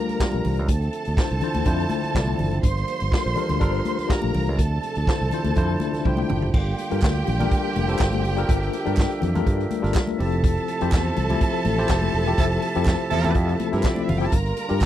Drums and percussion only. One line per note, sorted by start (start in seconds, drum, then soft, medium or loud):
0.09 closed hi-hat soft
0.09 high conga soft
0.20 kick medium
0.20 snare loud
0.20 clap loud
0.32 high conga medium
0.45 open hi-hat medium
0.45 muted conga soft
0.45 low conga medium
0.57 closed hi-hat soft
0.68 kick loud
0.68 closed hi-hat medium
0.68 muted conga soft
0.82 closed hi-hat soft
0.93 closed hi-hat medium
1.05 closed hi-hat soft
1.17 kick loud
1.17 snare loud
1.17 clap medium
1.29 closed hi-hat soft
1.41 closed hi-hat medium
1.41 low conga medium
1.54 closed hi-hat soft
1.54 high conga medium
1.54 low conga medium
1.65 kick loud
1.65 closed hi-hat medium
1.65 muted conga soft
1.80 closed hi-hat soft
1.90 closed hi-hat medium
1.90 high conga medium
2.03 closed hi-hat soft
2.03 high conga soft
2.15 kick loud
2.15 snare loud
2.15 clap medium
2.27 high conga medium
2.39 open hi-hat medium
2.39 low conga medium
2.51 closed hi-hat soft
2.63 kick loud
2.63 closed hi-hat medium
2.77 closed hi-hat soft
2.88 closed hi-hat medium
2.88 muted conga soft
3.00 closed hi-hat soft
3.12 kick loud
3.12 snare loud
3.12 clap medium
3.25 closed hi-hat soft
3.36 closed hi-hat medium
3.36 muted conga soft
3.36 low conga medium
3.49 closed hi-hat soft
3.49 high conga medium
3.49 low conga medium
3.61 kick loud
3.61 closed hi-hat medium
3.85 closed hi-hat medium
3.85 high conga medium
3.99 snare soft
3.99 closed hi-hat soft
3.99 high conga soft
4.10 kick loud
4.10 snare loud
4.10 clap medium
4.22 high conga medium
4.34 open hi-hat medium
4.34 low conga medium
4.47 closed hi-hat soft
4.59 kick loud
4.59 closed hi-hat medium
4.83 closed hi-hat medium
4.83 muted conga soft
4.95 closed hi-hat soft
5.07 kick loud
5.07 snare loud
5.07 clap medium
5.31 closed hi-hat medium
5.31 low conga medium
5.44 closed hi-hat soft
5.44 high conga medium
5.44 low conga medium
5.56 kick loud
5.56 closed hi-hat medium
5.56 muted conga soft
5.80 closed hi-hat medium
5.80 muted conga soft
5.80 high conga medium
5.94 snare soft
5.94 closed hi-hat soft
5.94 high conga medium
6.05 kick loud
6.05 high tom medium
6.17 mid tom medium
6.17 high conga medium
6.29 mid tom medium
6.29 muted conga soft
6.29 low conga medium
6.42 floor tom medium
6.54 kick loud
6.54 crash loud
6.54 muted conga soft
6.78 closed hi-hat medium
6.78 muted conga soft
6.91 closed hi-hat soft
7.02 kick loud
7.02 snare loud
7.02 clap medium
7.02 muted conga soft
7.05 clap medium
7.15 closed hi-hat soft
7.27 closed hi-hat medium
7.27 low conga medium
7.40 closed hi-hat medium
7.40 high conga medium
7.40 low conga medium
7.51 kick loud
7.51 closed hi-hat medium
7.75 closed hi-hat medium
7.75 high conga medium
7.89 closed hi-hat soft
7.98 kick loud
7.98 snare loud
7.98 clap loud
8.01 clap loud
8.12 closed hi-hat soft
8.12 high conga medium
8.25 open hi-hat medium
8.25 muted conga soft
8.37 closed hi-hat soft
8.49 kick loud
8.49 closed hi-hat medium
8.49 muted conga soft
8.63 closed hi-hat soft
8.73 closed hi-hat medium
8.73 muted conga soft
8.86 closed hi-hat soft
8.96 kick loud
8.96 snare loud
8.96 clap loud
8.96 muted conga soft
9.00 clap medium
9.11 closed hi-hat soft
9.22 closed hi-hat medium
9.22 low conga medium
9.35 closed hi-hat medium
9.35 high conga medium
9.35 low conga medium
9.47 kick loud
9.47 closed hi-hat medium
9.47 muted conga soft
9.60 closed hi-hat soft
9.71 closed hi-hat medium
9.71 high conga medium
9.84 snare soft
9.84 closed hi-hat soft
9.94 kick loud
9.94 snare loud
9.94 clap loud
9.97 clap loud
10.07 closed hi-hat soft
10.07 high conga medium
10.20 open hi-hat medium
10.20 muted conga soft
10.32 closed hi-hat soft
10.44 kick loud
10.44 closed hi-hat medium
10.44 muted conga soft
10.57 closed hi-hat soft
10.68 closed hi-hat medium
10.68 muted conga soft
10.81 closed hi-hat medium
10.92 kick loud
10.92 snare loud
10.92 clap loud
10.94 clap medium
11.16 closed hi-hat medium
11.16 muted conga soft
11.16 low conga medium
11.29 closed hi-hat medium
11.29 high conga medium
11.29 low conga medium
11.41 kick loud
11.41 closed hi-hat medium
11.41 muted conga soft
11.54 closed hi-hat soft
11.65 closed hi-hat medium
11.65 high conga medium
11.78 snare soft
11.78 closed hi-hat soft
11.89 kick medium
11.89 snare loud
11.89 clap loud
11.90 clap loud
12.02 high conga medium
12.13 open hi-hat medium
12.26 closed hi-hat soft
12.37 kick loud
12.37 closed hi-hat medium
12.37 muted conga soft
12.51 closed hi-hat soft
12.62 closed hi-hat medium
12.62 muted conga soft
12.75 closed hi-hat medium
12.85 kick loud
12.85 snare loud
12.85 clap medium
12.85 muted conga soft
12.88 clap medium
12.99 closed hi-hat soft
13.10 closed hi-hat medium
13.10 muted conga soft
13.10 low conga medium
13.23 closed hi-hat medium
13.23 high conga medium
13.23 low conga medium
13.34 kick loud
13.34 closed hi-hat medium
13.34 muted conga soft
13.49 closed hi-hat soft
13.59 closed hi-hat medium
13.59 high conga medium
13.73 snare soft
13.73 closed hi-hat soft
13.83 kick loud
13.83 snare loud
13.83 clap medium
13.83 muted conga soft
13.85 clap loud
13.96 closed hi-hat soft
13.96 high conga medium
14.09 open hi-hat medium
14.09 muted conga soft
14.09 low conga medium
14.20 closed hi-hat soft
14.32 kick loud
14.32 closed hi-hat loud
14.32 muted conga soft
14.46 closed hi-hat soft
14.57 closed hi-hat medium
14.57 muted conga soft
14.69 closed hi-hat soft
14.81 kick loud
14.81 clap medium